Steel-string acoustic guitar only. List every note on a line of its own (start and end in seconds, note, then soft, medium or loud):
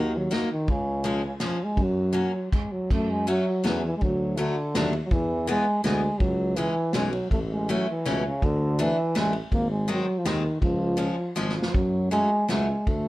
0.00 0.11 F#3 medium
0.00 0.11 A#3 medium
0.00 0.11 D#4 soft
0.31 0.48 F#3 medium
0.31 0.48 A#3 medium
0.31 0.48 D#4 medium
1.04 1.21 F3 medium
1.04 1.21 G#3 soft
1.04 1.21 C#4 medium
1.40 1.57 F3 soft
1.40 1.57 G#3 soft
1.40 1.57 C#4 medium
2.13 2.31 F#3 medium
2.13 2.31 A#3 soft
2.13 2.31 C#4 medium
3.27 3.45 F#3 medium
3.27 3.44 A3 medium
3.27 3.45 C#4 medium
3.64 3.81 F#3 soft
3.64 3.81 A3 medium
3.64 3.82 C#4 medium
4.37 4.54 F#3 medium
4.37 4.55 A3 medium
4.37 4.55 D4 medium
4.75 4.92 F#3 medium
4.75 4.92 A3 medium
4.75 4.92 D4 medium
5.47 5.64 E3 medium
5.47 5.64 G#3 soft
5.47 5.64 B3 medium
5.84 6.00 E3 medium
5.84 6.01 G#3 medium
5.84 6.01 B3 medium
6.56 6.73 E3 medium
6.56 6.73 G#3 soft
6.56 6.74 C#4 medium
6.94 7.11 E3 medium
6.94 7.11 G#3 soft
6.94 7.11 C#4 medium
7.69 7.86 E3 medium
7.69 7.86 A3 medium
7.69 7.87 C#4 medium
8.05 8.23 E3 medium
8.05 8.23 A3 medium
8.05 8.23 C#4 medium
8.79 8.96 E3 medium
8.79 8.96 A3 medium
8.79 8.97 D4 medium
9.15 9.32 E3 medium
9.15 9.32 A3 soft
9.15 9.33 D4 medium
9.88 10.05 D#3 medium
9.88 10.05 G#3 medium
9.88 10.05 C4 medium
10.25 10.42 D#3 medium
10.25 10.42 G#3 medium
10.25 10.43 C4 medium
10.97 11.15 F3 soft
10.97 11.15 G#3 soft
10.97 11.15 C#4 medium
11.36 11.53 F3 medium
11.36 11.54 G#3 medium
11.36 11.54 C#4 medium
12.11 12.28 F#3 medium
12.11 12.29 A3 soft
12.11 12.29 C#4 soft
12.48 12.66 F#3 soft
12.48 12.66 A3 medium
12.48 12.66 C#4 medium